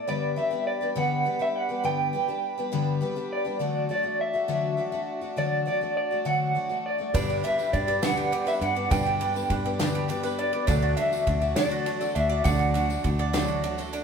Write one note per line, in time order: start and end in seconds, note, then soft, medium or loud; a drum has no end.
0.07 0.37 G2 medium
0.07 0.38 D3 medium
0.07 0.35 G3 medium
0.07 0.36 B3 medium
0.07 0.37 D4 medium
0.07 3.57 G4 medium
0.07 0.37 G4 medium
0.07 3.57 D5 medium
0.07 0.37 D5 medium
0.07 3.57 B5 medium
0.36 0.52 G3 medium
0.36 0.51 B3 medium
0.36 0.50 D4 medium
0.36 0.50 G4 medium
0.36 0.67 E5 loud
0.51 0.82 G3 soft
0.51 0.82 B3 soft
0.51 0.81 D4 medium
0.51 0.80 G4 medium
0.67 0.97 D5 medium
0.81 0.95 G3 medium
0.81 0.95 B3 medium
0.81 0.95 D4 medium
0.81 0.96 G4 medium
0.95 1.25 G2 medium
0.95 1.25 D3 medium
0.95 1.23 G3 medium
0.95 1.24 B3 medium
0.95 1.25 D4 medium
0.95 1.25 G4 loud
0.95 1.42 F#5 medium
1.24 1.40 G3 medium
1.24 1.40 B3 medium
1.24 1.39 D4 medium
1.24 1.38 G4 medium
1.39 1.70 G3 medium
1.39 1.70 B3 medium
1.39 1.69 D4 medium
1.39 1.68 G4 medium
1.39 1.56 E5 medium
1.56 1.85 F#5 loud
1.69 1.83 G3 soft
1.69 1.83 B3 medium
1.69 1.84 D4 medium
1.69 1.84 G4 medium
1.83 2.13 G2 medium
1.83 2.14 D3 medium
1.83 2.12 G3 medium
1.83 2.13 B3 medium
1.83 2.14 D4 medium
1.83 2.14 G4 medium
1.83 2.98 G5 medium
2.13 2.28 G3 medium
2.13 2.29 B3 medium
2.13 2.28 D4 medium
2.13 2.27 G4 medium
2.28 2.59 G3 soft
2.28 2.58 B3 soft
2.28 2.57 D4 medium
2.28 2.56 G4 medium
2.58 2.71 G3 medium
2.58 2.72 B3 medium
2.58 2.72 D4 medium
2.58 2.73 G4 medium
2.72 3.02 G2 medium
2.72 3.02 D3 loud
2.72 3.00 G3 loud
2.72 3.00 B3 loud
2.72 3.01 D4 medium
2.72 3.02 G4 loud
3.01 3.16 G3 medium
3.01 3.16 B3 medium
3.01 3.15 D4 medium
3.01 3.14 G4 medium
3.16 3.46 G3 medium
3.16 3.46 B3 medium
3.16 3.45 D4 medium
3.16 3.43 G4 medium
3.33 3.90 D5 medium
3.45 3.60 G3 soft
3.45 3.60 B3 medium
3.45 3.60 D4 medium
3.45 3.60 G4 medium
3.59 3.90 D3 medium
3.59 3.88 F#3 medium
3.59 3.89 A3 medium
3.59 3.90 D4 medium
3.59 7.10 F#4 medium
3.59 3.90 F#4 medium
3.59 7.10 D5 medium
3.59 7.10 A5 loud
3.89 4.04 F#3 medium
3.89 4.04 A3 medium
3.89 4.03 D4 medium
3.89 4.02 F#4 medium
3.89 4.21 D5 medium
4.03 4.35 A3 soft
4.03 4.34 D4 medium
4.03 4.32 F#4 medium
4.21 5.38 E5 medium
4.33 4.48 A3 medium
4.33 4.48 D4 medium
4.33 4.48 F#4 medium
4.48 4.78 D3 medium
4.48 4.76 F#3 medium
4.48 4.77 A3 medium
4.48 4.77 D4 medium
4.48 4.78 F#4 medium
4.77 4.92 F#3 medium
4.77 4.93 A3 medium
4.77 4.92 D4 medium
4.77 4.91 F#4 medium
4.92 5.22 A3 medium
4.92 5.21 D4 medium
4.92 5.20 F#4 medium
5.21 5.36 A3 soft
5.21 5.37 D4 medium
5.21 5.37 F#4 medium
5.36 5.66 D3 medium
5.36 5.64 F#3 medium
5.36 5.65 A3 medium
5.36 5.66 D4 medium
5.36 5.67 F#4 medium
5.36 5.66 D5 medium
5.66 5.81 F#3 medium
5.66 5.81 A3 medium
5.66 5.81 D4 medium
5.66 5.80 F#4 medium
5.66 5.96 D5 medium
5.81 6.12 A3 soft
5.81 6.11 D4 medium
5.81 6.10 F#4 medium
5.97 6.26 D5 medium
6.11 6.25 A3 soft
6.11 6.25 D4 medium
6.11 6.26 F#4 medium
6.25 6.55 D3 medium
6.25 6.53 F#3 medium
6.25 6.54 A3 medium
6.25 6.55 D4 medium
6.25 6.56 F#4 medium
6.25 6.86 F#5 medium
6.55 6.70 F#3 medium
6.55 6.70 A3 medium
6.55 6.69 D4 medium
6.55 6.68 F#4 medium
6.69 7.00 A3 soft
6.69 6.98 D4 medium
6.69 6.97 F#4 medium
6.86 7.14 D5 medium
6.98 7.15 A3 medium
6.98 7.14 D4 soft
6.98 7.14 F#4 medium
7.13 8.87 G1 medium
7.13 7.43 G2 medium
7.13 8.87 G2 medium
7.13 7.40 G2 loud
7.13 7.44 D3 medium
7.13 10.64 G3 medium
7.13 7.42 G3 medium
7.13 10.64 B3 medium
7.13 7.43 B3 medium
7.13 10.64 D4 medium
7.13 7.43 D4 loud
7.13 7.43 D4 medium
7.13 10.65 G4 medium
7.13 7.44 G4 medium
7.13 10.64 B4 medium
7.13 10.64 D5 medium
7.13 12.42 D5 medium
7.13 7.44 D5 loud
7.13 10.65 B5 medium
7.13 kick loud
7.13 ride loud
7.13 tambourine loud
7.30 7.88 G4 medium
7.30 tambourine soft
7.43 7.58 G3 medium
7.43 7.58 B3 medium
7.43 7.72 D4 medium
7.43 7.57 D4 medium
7.43 7.57 G4 medium
7.43 7.73 E5 medium
7.43 ride medium
7.58 7.89 G3 soft
7.58 7.87 B3 soft
7.58 7.87 D4 soft
7.58 7.86 G4 medium
7.58 tambourine medium
7.73 7.99 G2 medium
7.73 8.01 D4 medium
7.73 8.01 D5 medium
7.73 kick medium
7.73 ride medium
7.87 8.02 G3 soft
7.87 8.02 B3 medium
7.87 8.02 D4 soft
7.87 8.02 G4 medium
7.87 8.46 D5 medium
7.87 tambourine soft
8.02 8.32 G2 medium
8.02 8.32 D3 medium
8.02 8.30 G3 medium
8.02 8.31 B3 medium
8.02 8.31 D4 medium
8.02 8.32 D4 medium
8.02 8.33 G4 medium
8.02 8.48 F#5 medium
8.02 snare loud
8.02 ride loud
8.02 tambourine loud
8.17 8.76 G4 medium
8.31 8.46 G3 medium
8.31 8.46 B3 medium
8.31 8.60 D4 medium
8.31 8.45 D4 medium
8.31 8.44 G4 medium
8.31 ride medium
8.46 8.76 G3 medium
8.46 8.76 B3 medium
8.46 8.75 D4 medium
8.46 8.74 G4 medium
8.46 8.76 B4 medium
8.46 8.61 E5 loud
8.46 tambourine medium
8.61 8.87 G2 medium
8.61 8.90 D4 medium
8.61 8.91 F#5 loud
8.61 ride medium
8.75 8.90 G3 medium
8.75 8.90 B3 medium
8.75 8.90 D4 medium
8.75 8.90 G4 medium
8.75 9.35 D5 medium
8.90 10.64 G1 medium
8.90 9.20 G2 medium
8.90 9.42 G2 loud
8.90 10.64 G2 medium
8.90 9.20 D3 medium
8.90 9.19 G3 medium
8.90 9.19 B3 medium
8.90 9.21 D4 medium
8.90 9.20 D4 medium
8.90 9.21 G4 loud
8.90 10.05 G5 loud
8.90 kick loud
8.90 ride medium
8.90 tambourine loud
9.06 9.65 G4 medium
9.06 tambourine soft
9.20 9.35 G3 medium
9.20 9.34 B3 medium
9.20 9.49 D4 medium
9.20 9.34 D4 medium
9.20 9.33 G4 medium
9.20 ride medium
9.34 9.65 G3 soft
9.34 9.65 B3 medium
9.34 9.64 D4 medium
9.34 9.63 G4 medium
9.34 tambourine medium
9.50 10.51 G2 loud
9.50 9.79 D4 medium
9.50 kick medium
9.50 ride medium
9.64 9.78 G3 medium
9.64 9.79 B3 medium
9.64 9.79 D4 medium
9.64 9.79 G4 medium
9.64 10.23 D5 medium
9.64 tambourine soft
9.79 10.09 G2 loud
9.79 10.09 D3 medium
9.79 10.07 G3 loud
9.79 10.08 B3 loud
9.79 10.09 D4 loud
9.79 10.08 D4 medium
9.79 10.09 G4 loud
9.79 snare loud
9.79 ride medium
9.79 tambourine loud
9.95 10.53 G4 medium
10.08 10.23 G3 medium
10.08 10.23 B3 medium
10.08 10.37 D4 medium
10.08 10.23 D4 medium
10.08 10.21 G4 medium
10.08 ride medium
10.23 10.54 G3 soft
10.23 10.54 B3 medium
10.23 10.52 D4 medium
10.23 10.51 G4 medium
10.23 10.68 B4 medium
10.23 tambourine medium
10.39 10.66 D4 medium
10.39 10.67 D5 medium
10.39 ride medium
10.53 10.67 G3 medium
10.53 10.68 B3 medium
10.53 10.68 D4 medium
10.53 10.68 G4 medium
10.53 10.67 D5 medium
10.67 10.93 D2 loud
10.67 12.42 D2 medium
10.67 10.97 D3 medium
10.67 12.42 D3 medium
10.67 10.96 F#3 medium
10.67 14.04 F#3 medium
10.67 14.04 A3 medium
10.67 10.97 A3 medium
10.67 10.96 D4 loud
10.67 14.04 D4 medium
10.67 10.98 D4 medium
10.67 14.04 F#4 medium
10.67 10.98 F#4 medium
10.67 14.04 A4 medium
10.67 10.96 D5 medium
10.67 13.92 D5 medium
10.67 14.04 A5 loud
10.67 kick loud
10.67 ride medium
10.67 tambourine loud
10.82 11.42 F#4 medium
10.97 11.12 F#3 medium
10.97 11.13 A3 medium
10.97 11.26 D4 medium
10.97 11.12 D4 medium
10.97 11.11 F#4 medium
10.97 11.55 E5 loud
10.97 ride medium
11.12 11.43 A3 medium
11.12 11.42 D4 medium
11.12 11.41 F#4 medium
11.12 tambourine medium
11.27 11.52 D2 medium
11.27 11.55 D4 medium
11.27 kick medium
11.27 ride medium
11.42 11.57 A3 soft
11.42 11.57 D4 medium
11.42 11.57 F#4 medium
11.42 12.00 D5 medium
11.42 tambourine soft
11.56 11.86 D3 medium
11.56 11.85 F#3 medium
11.56 11.86 A3 medium
11.56 11.85 D4 medium
11.56 11.86 D4 medium
11.56 11.87 F#4 medium
11.56 12.15 D5 medium
11.56 snare loud
11.56 ride loud
11.56 tambourine loud
11.71 12.31 F#4 medium
11.86 12.01 F#3 medium
11.86 12.01 A3 medium
11.86 12.14 D4 medium
11.86 12.01 D4 medium
11.86 11.99 F#4 medium
11.86 ride medium
12.01 12.32 A3 soft
12.01 12.31 D4 medium
12.01 12.29 F#4 medium
12.01 12.29 A4 medium
12.01 tambourine medium
12.15 12.41 D2 medium
12.15 12.43 D4 medium
12.15 12.44 E5 loud
12.15 ride medium
12.30 12.44 A3 medium
12.30 12.45 D4 medium
12.30 12.44 F#4 medium
12.30 12.89 D5 medium
12.44 12.96 D2 loud
12.44 14.04 D2 medium
12.44 12.74 D3 medium
12.44 14.04 D3 medium
12.44 12.73 F#3 medium
12.44 12.75 A3 medium
12.44 12.73 D4 medium
12.44 12.75 D4 medium
12.44 12.75 F#4 medium
12.44 14.04 D5 medium
12.44 13.59 F#5 loud
12.44 kick loud
12.44 ride loud
12.44 tambourine loud
12.59 13.19 F#4 medium
12.74 12.90 F#3 medium
12.74 12.90 A3 medium
12.74 13.03 D4 medium
12.74 12.89 D4 medium
12.74 12.88 F#4 medium
12.74 ride medium
12.74 tambourine soft
12.89 13.20 A3 soft
12.89 13.19 D4 medium
12.89 13.17 F#4 medium
12.89 tambourine medium
13.04 14.04 D2 medium
13.04 13.32 D4 medium
13.04 kick medium
13.04 ride medium
13.19 13.34 A3 medium
13.19 13.34 D4 medium
13.19 13.34 F#4 medium
13.19 13.78 D5 medium
13.33 13.64 D3 loud
13.33 13.62 F#3 loud
13.33 13.63 A3 loud
13.33 13.62 D4 medium
13.33 13.64 D4 loud
13.33 13.65 F#4 loud
13.33 snare loud
13.33 ride medium
13.33 tambourine loud
13.48 14.04 F#4 medium
13.63 13.78 F#3 medium
13.63 13.79 A3 medium
13.63 13.92 D4 medium
13.63 13.78 D4 medium
13.63 13.77 F#4 medium
13.63 13.92 F#5 medium
13.63 ride medium
13.78 14.04 A3 medium
13.78 14.04 D4 medium
13.78 14.04 F#4 medium
13.78 14.04 A4 medium
13.78 tambourine medium
13.93 14.04 D4 medium
13.93 14.04 D5 medium
13.93 ride medium
13.93 tambourine soft